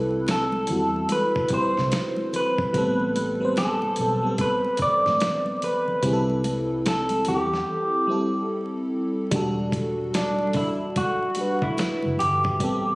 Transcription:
Already playing: fingered electric bass C2, fm electric piano G3 C4 E4 A4, clean electric guitar B4
0.26 snare, closed hi-hat, muted conga
0.31 clean electric guitar A4
0.52 muted conga, high conga
0.67 fingered electric bass E2, fm electric piano G3 C4 E4, closed hi-hat, low conga
0.72 fm electric piano F#4
1.09 clean electric guitar B4, closed hi-hat, high conga
1.35 kick, muted conga
1.48 fm electric piano G3 C4, muted fingered electric bass stroke, kick, closed hi-hat
1.53 fm electric piano E4 B4, clean electric guitar C5
1.61 fm electric piano C5
1.77 fingered electric bass C2, snare
1.91 snare, closed hi-hat, muted conga
2.16 muted conga, high conga
2.33 clean electric guitar B4, closed hi-hat, low conga
2.58 kick, low conga
2.73 fingered electric bass A1, fm electric piano G3 B3 C4, kick, closed hi-hat, muted conga
2.78 fm electric piano A4
3.16 closed hi-hat, high conga
3.40 fm electric piano G3 C4 B4
3.45 fm electric piano C5
3.56 clean electric guitar A4, snare, closed hi-hat, muted conga
3.82 muted conga, high conga
3.96 fingered electric bass B1, fm electric piano G3 B3, closed hi-hat, low conga
4.00 fm electric piano C4 A4
4.22 fm electric piano G3 B3 C4
4.27 fm electric piano A4
4.38 clean electric guitar B4, kick, closed hi-hat, high conga
4.65 muted conga
4.77 muted fingered electric bass stroke, kick, closed hi-hat
4.82 clean electric guitar D5
5.06 fingered electric bass A1, snare
5.20 snare, closed hi-hat, muted conga
5.46 muted conga, high conga
5.62 clean electric guitar B4, closed hi-hat, low conga
5.88 low conga
6.02 fingered electric bass C2, fm electric piano G3 C4 E4 G#4, kick, closed hi-hat, muted conga
6.13 fm electric piano A4
6.30 muted conga
6.44 closed hi-hat, high conga
6.85 clean electric guitar A4, snare, closed hi-hat, muted conga
7.09 closed hi-hat, high conga
7.25 fingered electric bass E2, fm electric piano G3 C4, clean electric guitar G4, closed hi-hat, low conga
7.29 fm electric piano E4 G4
7.37 fm electric piano A4
7.54 snare
8.07 fm electric piano G3 C4 E4
8.12 fm electric piano A4
9.31 fingered electric bass E1, fm electric piano G3 D4 F#4, kick, closed hi-hat, muted conga
9.36 fm electric piano A4
9.72 kick, closed hi-hat, high conga
10.14 clean electric guitar D4, snare, closed hi-hat
10.39 high conga
10.53 fm electric piano G3 D4 F#4, clean electric guitar E4, kick, open hi-hat, low conga
10.58 fm electric piano A4
10.96 clean electric guitar F#4, kick, closed hi-hat, muted conga, high conga
11.35 fm electric piano G3 D4, closed hi-hat
11.39 fm electric piano F#4 B4
11.62 clean electric guitar E4, kick
11.77 snare, closed hi-hat, muted conga
12.03 fingered electric bass F#1, muted conga, high conga
12.19 fingered electric bass G1, clean electric guitar G4, closed hi-hat, low conga
12.44 kick, low conga
12.59 fingered electric bass A1, fm electric piano G3 B3 C4, kick, closed hi-hat
12.64 fm electric piano A4

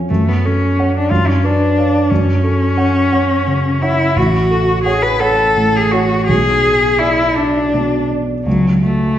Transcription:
Already playing: grand piano F2 F3 G#4 C#5 G#5
0.09 grand piano F#2, cello A3
0.29 cello B3
0.45 cello C#4, grand piano A4
0.79 grand piano C#5 F#5
0.97 cello D4
1.10 grand piano F#2, cello F4
1.28 cello C#4
1.44 cello D4, grand piano B4
1.77 grand piano C#5 F5
2.10 grand piano F#2, cello C#4
2.44 grand piano A4
2.77 grand piano C#5 F#5
3.12 grand piano C#5 F#5
3.46 grand piano C#3
3.81 cello E4, grand piano C#5 F#5
4.16 grand piano A1, cello F#4
4.51 grand piano A4
4.83 cello G#4, grand piano C#5 F#5
5.02 cello B4
5.20 cello A4, grand piano C#5 F#5
5.56 grand piano A2
5.76 cello G#4
5.91 cello F#4, grand piano C#5 F#5
6.26 grand piano B1, cello G#4
6.64 grand piano G#4
6.99 cello E4, grand piano D5
7.35 cello D4, grand piano D5
7.74 grand piano B2
8.10 grand piano D5
8.45 grand piano C#2, cello F#3
8.83 cello A3, grand piano F#4

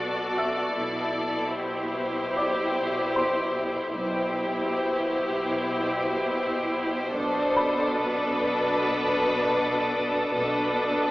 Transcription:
Already playing: synth drone B1, cello section B2, viola section F#4, violin section A4 D5
0.37 felt piano E5 E6
0.77 double bass section B1, synth drone B1, cello section B2, viola section E4
1.58 violin section G4 C5
2.37 felt piano D5 D6
3.16 felt piano C6
3.96 double bass section B1, synth drone B1, cello section B2, viola section E4, violin section G4 C5
7.16 double bass section B1, synth drone B1, cello section B2, viola section D4, violin section A4 D6 D#6 A6
7.56 felt piano B5
7.98 violin section B4
10.36 synth drone B1, double bass section B1, cello section B2, viola section D4, violin section A4 B4

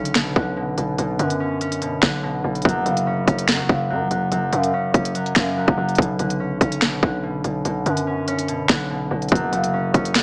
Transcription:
Already playing: 808-style bass B1, harp D3 C#4
0.05 closed hi-hat
0.14 harp B2, finger snap, snare, closed hi-hat
0.36 808-style bass B1, harp D3, kick
0.57 harp B2
0.78 808-style bass B1, harp B2, closed hi-hat
0.98 808-style bass B1, harp B2, closed hi-hat
1.19 808-style bass F#2, harp D3, closed hi-hat
1.30 closed hi-hat
1.40 harp C#4
1.61 harp C#4, closed hi-hat
1.72 closed hi-hat
1.82 harp B2, closed hi-hat
2.02 808-style bass B1, harp D3, finger snap, kick, snare
2.23 harp B2
2.44 808-style bass B1, harp B2
2.55 closed hi-hat
2.62 808-style bass F#1, harp F#2, kick, closed hi-hat
2.69 closed hi-hat
2.85 808-style bass F#1, harp C#3, closed hi-hat
2.97 closed hi-hat
3.07 harp C#4
3.28 808-style bass F#1, harp C#4, kick, closed hi-hat
3.39 closed hi-hat
3.48 808-style bass F#2, harp F#2, finger snap, snare, closed hi-hat
3.59 808-style bass F#1
3.69 808-style bass F#1, harp C#3, kick
3.90 808-style bass F#2, harp F#2
4.01 808-style bass F#1
4.11 808-style bass F#1, harp F#2, closed hi-hat
4.32 808-style bass F#1, harp F#2, closed hi-hat
4.53 808-style bass F#2, harp C#3, closed hi-hat
4.64 closed hi-hat
4.74 harp C#4
4.94 808-style bass F#1, harp C#4, kick, closed hi-hat
5.05 closed hi-hat
5.15 harp F#2, closed hi-hat
5.26 closed hi-hat
5.35 808-style bass F#2, harp C#3, finger snap, kick, snare
5.57 harp F#2
5.68 808-style bass F#1, kick
5.78 808-style bass F#1, harp F#2
5.89 closed hi-hat
5.95 808-style bass B1, harp B2, kick, closed hi-hat
6.02 closed hi-hat
6.19 808-style bass B1, harp D3, closed hi-hat
6.30 closed hi-hat
6.40 harp C#4
6.61 808-style bass B1, harp C#4, kick, closed hi-hat
6.72 closed hi-hat
6.81 harp B2, finger snap, snare, closed hi-hat
7.03 808-style bass B1, harp D3, kick
7.23 harp B2
7.44 808-style bass B1, harp B2, closed hi-hat
7.65 808-style bass B1, harp B2, closed hi-hat
7.86 808-style bass F#2, harp D3, closed hi-hat
7.97 closed hi-hat
8.07 harp C#4
8.28 harp C#4, closed hi-hat
8.39 closed hi-hat
8.48 harp B2, closed hi-hat
8.68 808-style bass B1, harp D3, finger snap, kick, snare
8.90 harp B2
9.11 808-style bass B1, harp B2
9.22 closed hi-hat
9.29 808-style bass F#1, harp F#2, kick, closed hi-hat
9.35 closed hi-hat
9.52 808-style bass F#1, harp C#3, closed hi-hat
9.64 closed hi-hat
9.73 harp C#4
9.94 808-style bass F#1, harp C#4, kick, closed hi-hat
10.05 closed hi-hat
10.14 808-style bass F#2, harp F#2, finger snap, snare, closed hi-hat

